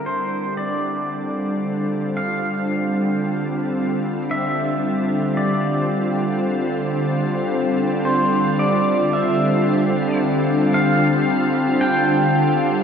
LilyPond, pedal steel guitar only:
\new Staff \with { instrumentName = "Pedal steel guitar" } { \time 4/4 \key d \minor \tempo 4 = 56 c''8 d''4. f''2 | e''4 d''4 r4. c''8 | d''8 e''4 r8 f''4 g''4 | }